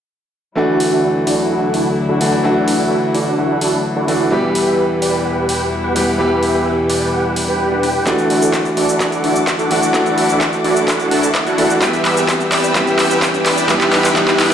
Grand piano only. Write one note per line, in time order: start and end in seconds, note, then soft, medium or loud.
0.55 2.17 E3 medium
0.55 2.18 A3 medium
0.55 2.18 D4 medium
0.55 2.19 F#4 loud
2.20 2.41 E3 medium
2.20 2.41 A3 medium
2.20 2.41 D4 medium
2.20 2.42 F#4 medium
2.43 4.05 E3 medium
2.43 4.05 A3 medium
2.43 4.06 D4 medium
2.43 4.06 F#4 loud
4.08 4.29 E3 medium
4.08 4.29 A3 medium
4.08 4.29 D4 medium
4.08 4.29 F#4 medium
4.30 5.92 E3 loud
4.30 5.93 G3 medium
4.30 5.93 B3 medium
4.30 5.94 G4 loud
5.95 6.16 E3 medium
5.95 6.16 G3 medium
5.95 6.17 B3 medium
5.95 6.17 G4 medium
6.18 7.80 E3 medium
6.18 7.80 G3 medium
6.18 7.81 B3 medium
6.18 7.81 G4 loud
8.05 9.67 E3 loud
8.05 9.68 A3 medium
8.05 9.68 D4 medium
8.05 9.69 F#4 loud
9.70 9.91 E3 medium
9.70 9.91 A3 medium
9.70 9.91 D4 medium
9.70 9.92 F#4 medium
9.93 11.55 E3 medium
9.93 11.55 A3 medium
9.93 11.56 D4 medium
9.93 11.56 F#4 loud
11.58 11.79 E3 medium
11.58 11.79 A3 medium
11.58 11.79 D4 medium
11.58 11.79 F#4 medium
11.80 12.73 E3 medium
11.80 12.73 G3 medium
11.80 12.74 B3 medium
11.80 12.74 G4 loud
12.74 13.66 E3 medium
12.74 13.67 G3 medium
12.74 13.67 B3 medium
12.74 13.68 G4 loud
13.68 14.13 E3 loud
13.68 14.14 G3 medium
13.68 14.14 B3 medium
13.68 14.15 G4 loud
14.15 14.54 E3 loud
14.15 14.54 G3 medium
14.15 14.54 B3 medium
14.15 14.54 G4 loud